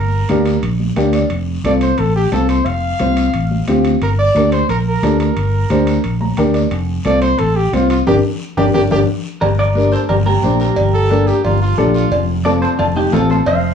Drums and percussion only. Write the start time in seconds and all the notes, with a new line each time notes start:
0.29 high conga, high timbale, short guiro
0.46 high timbale, short guiro
0.63 high timbale, long guiro
0.80 high conga
0.97 high conga, high timbale, short guiro
1.13 high timbale, short guiro
1.30 high timbale, long guiro
1.65 high conga, high timbale, short guiro
1.81 high timbale, short guiro
1.98 high timbale, long guiro
2.32 high conga, high timbale, low timbale, short guiro
2.49 high timbale, short guiro
2.66 high timbale, long guiro
3.00 high conga, high timbale, short guiro
3.17 high timbale, short guiro
3.33 high timbale, long guiro
3.51 high conga
3.67 high conga, high timbale, short guiro
3.84 high timbale, short guiro
4.01 high timbale, long guiro
4.35 high conga, high timbale, short guiro
4.52 high timbale, short guiro
4.69 high timbale, long guiro
5.03 high conga, high timbale, low timbale, short guiro
5.20 high timbale, short guiro
5.37 high timbale, long guiro
5.70 high conga, high timbale, short guiro
5.87 high timbale, short guiro
6.04 high timbale, long guiro
6.21 high conga
6.37 high conga, high timbale, short guiro
6.54 high timbale, short guiro
6.71 high timbale, long guiro
7.05 high conga, high timbale, short guiro
7.22 high timbale, short guiro
7.39 high timbale, long guiro
7.73 high conga, high timbale, low timbale, short guiro
7.90 high timbale, short guiro
8.07 low conga, high timbale, long guiro
8.58 low conga, high timbale, long guiro
8.74 low conga, high timbale, long guiro
8.91 low conga, high timbale, long guiro
9.42 cowbell, low conga, long guiro
9.76 high conga, short guiro
9.92 short guiro
10.09 cowbell, low conga, long guiro
10.26 high conga
10.43 high conga, short guiro
10.60 short guiro
10.76 cowbell, low conga, long guiro
11.11 high conga, short guiro
11.27 short guiro
11.44 cowbell, low conga, long guiro
11.78 high conga, low conga, short guiro
11.94 short guiro
12.11 cowbell, low conga, long guiro
12.45 high conga, short guiro
12.62 short guiro
12.79 cowbell, low conga, long guiro
12.96 high conga
13.12 high conga, low conga, low timbale, short guiro
13.30 short guiro
13.46 cowbell, low conga, long guiro